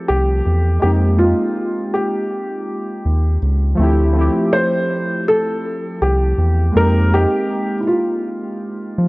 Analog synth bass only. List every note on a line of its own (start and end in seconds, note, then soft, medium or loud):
0.09 0.42 C2 medium
0.46 0.78 E2 medium
0.83 1.34 F2 medium
3.05 3.38 D#2 medium
3.42 3.75 C#2 medium
3.79 4.30 D2 loud
6.02 6.34 C2 medium
6.38 6.71 E2 medium
6.76 7.26 F2 loud
8.98 9.08 F3 loud